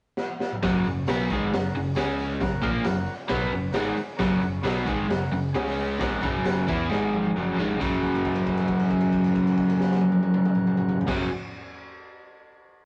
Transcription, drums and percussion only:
0.18 snare medium
0.41 snare medium
0.53 mid tom medium
0.63 kick loud
0.63 snare loud
0.63 open hi-hat medium
0.63 tambourine medium
0.84 tambourine medium
1.07 snare loud
1.07 open hi-hat medium
1.07 tambourine medium
1.30 kick loud
1.30 tambourine medium
1.53 snare loud
1.53 open hi-hat medium
1.73 tambourine soft
1.95 snare loud
1.95 open hi-hat medium
1.95 tambourine medium
2.18 tambourine medium
2.39 kick loud
2.39 snare loud
2.39 open hi-hat medium
2.39 tambourine medium
2.61 kick loud
2.61 tambourine medium
2.84 snare loud
2.84 open hi-hat medium
2.84 tambourine medium
3.06 tambourine medium
3.29 kick loud
3.29 snare loud
3.29 open hi-hat medium
3.50 tambourine soft
3.72 snare loud
3.72 open hi-hat medium
3.72 tambourine medium
3.96 tambourine medium
4.18 kick loud
4.18 snare loud
4.18 open hi-hat medium
4.18 tambourine medium
4.41 tambourine medium
4.63 snare loud
4.63 open hi-hat medium
4.63 tambourine medium
4.86 kick loud
4.86 tambourine medium
5.10 snare loud
5.10 open hi-hat medium
5.32 tambourine soft
5.55 snare loud
5.55 open hi-hat medium
5.55 tambourine medium
5.78 tambourine medium
6.00 kick loud
6.00 snare loud
6.00 open hi-hat medium
6.00 tambourine medium
6.21 kick loud
6.21 tambourine medium
6.44 snare loud
6.44 open hi-hat medium
6.44 tambourine medium
6.68 kick loud
6.68 tambourine medium
6.91 snare medium
6.91 tambourine soft
7.14 high tom medium
7.25 high tom medium
7.36 mid tom medium
7.36 tambourine loud
7.59 floor tom loud
7.59 tambourine medium
7.71 floor tom medium
7.81 kick loud
7.81 crash medium
7.81 tambourine medium
8.03 kick medium
8.03 crash soft
8.15 crash soft
8.25 kick medium
8.25 crash soft
8.36 crash soft
8.47 kick medium
8.47 crash soft
8.57 crash soft
8.68 kick medium
8.68 crash soft
8.80 crash soft
8.90 kick medium
8.90 crash soft
9.01 crash medium
9.13 kick medium
9.13 crash medium
9.24 crash medium
9.35 kick medium
9.35 crash medium
9.47 crash medium
9.58 kick medium
9.58 crash medium
9.70 crash medium
9.80 snare medium
9.91 snare medium
10.01 high tom loud
10.12 high tom medium
10.23 high tom medium
10.34 mid tom loud
10.45 mid tom loud
10.55 mid tom loud
10.67 mid tom loud
10.77 mid tom loud
10.89 floor tom loud
11.01 floor tom loud
11.08 kick loud
11.08 snare loud
11.08 crash loud

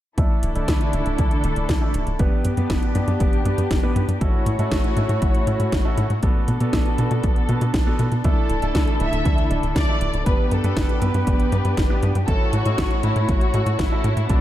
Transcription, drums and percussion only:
0.18 kick loud
0.18 closed hi-hat medium
0.43 closed hi-hat medium
0.56 closed hi-hat medium
0.68 kick loud
0.68 snare loud
0.68 closed hi-hat medium
0.81 closed hi-hat soft
0.93 closed hi-hat medium
1.06 closed hi-hat medium
1.18 kick loud
1.18 closed hi-hat medium
1.31 closed hi-hat soft
1.44 closed hi-hat medium
1.56 closed hi-hat medium
1.69 kick loud
1.69 snare loud
1.69 closed hi-hat medium
1.94 closed hi-hat medium
2.07 closed hi-hat medium
2.19 kick loud
2.19 closed hi-hat medium
2.45 closed hi-hat medium
2.57 closed hi-hat medium
2.70 kick loud
2.70 snare loud
2.70 closed hi-hat medium
2.82 closed hi-hat soft
2.95 closed hi-hat medium
3.08 closed hi-hat medium
3.20 kick loud
3.20 closed hi-hat medium
3.33 closed hi-hat soft
3.45 closed hi-hat medium
3.58 closed hi-hat medium
3.71 kick loud
3.71 snare loud
3.71 closed hi-hat medium
3.96 closed hi-hat medium
4.09 closed hi-hat medium
4.21 kick loud
4.21 closed hi-hat medium
4.46 closed hi-hat medium
4.59 closed hi-hat soft
4.72 kick loud
4.72 snare loud
4.72 closed hi-hat medium
4.84 closed hi-hat soft
4.97 closed hi-hat medium
5.09 closed hi-hat soft
5.22 kick loud
5.22 closed hi-hat medium
5.35 closed hi-hat soft
5.47 closed hi-hat medium
5.60 closed hi-hat soft
5.72 kick loud
5.72 snare loud
5.72 closed hi-hat medium
5.98 closed hi-hat medium
6.10 closed hi-hat soft
6.23 kick loud
6.23 closed hi-hat medium
6.48 closed hi-hat medium
6.60 closed hi-hat soft
6.73 kick loud
6.73 snare loud
6.73 closed hi-hat medium
6.86 closed hi-hat soft
6.98 closed hi-hat medium
7.11 closed hi-hat soft
7.24 kick loud
7.24 closed hi-hat medium
7.36 closed hi-hat soft
7.49 closed hi-hat medium
7.61 closed hi-hat soft
7.74 kick loud
7.74 snare loud
7.74 closed hi-hat medium
7.99 closed hi-hat medium
8.12 closed hi-hat soft
8.24 kick loud
8.24 closed hi-hat medium
8.50 closed hi-hat medium
8.62 closed hi-hat soft
8.75 kick loud
8.75 snare loud
8.75 closed hi-hat medium
8.87 closed hi-hat soft
9.00 closed hi-hat medium
9.13 closed hi-hat soft
9.25 kick loud
9.25 closed hi-hat medium
9.38 closed hi-hat soft
9.51 closed hi-hat medium
9.63 closed hi-hat soft
9.76 kick loud
9.76 snare loud
9.76 closed hi-hat medium
10.01 closed hi-hat medium
10.14 closed hi-hat soft
10.26 kick loud
10.26 closed hi-hat medium
10.51 closed hi-hat medium
10.64 closed hi-hat medium
10.77 kick loud
10.77 snare loud
10.77 closed hi-hat medium
10.89 closed hi-hat soft
11.02 closed hi-hat medium
11.14 closed hi-hat soft
11.27 kick loud
11.27 closed hi-hat medium
11.40 closed hi-hat soft
11.52 closed hi-hat medium
11.65 closed hi-hat medium
11.77 kick loud
11.77 snare loud
11.77 closed hi-hat medium
12.03 closed hi-hat medium
12.15 closed hi-hat medium
12.28 kick loud
12.28 closed hi-hat medium
12.53 closed hi-hat medium
12.66 closed hi-hat medium
12.78 kick loud
12.78 snare loud
12.78 closed hi-hat medium
12.91 closed hi-hat soft
13.03 closed hi-hat medium
13.16 closed hi-hat medium
13.29 kick loud
13.29 closed hi-hat medium
13.41 closed hi-hat soft
13.54 closed hi-hat medium
13.66 closed hi-hat medium
13.79 kick loud
13.79 snare loud
13.79 closed hi-hat medium
14.04 closed hi-hat medium
14.17 closed hi-hat medium
14.29 kick loud
14.29 closed hi-hat medium

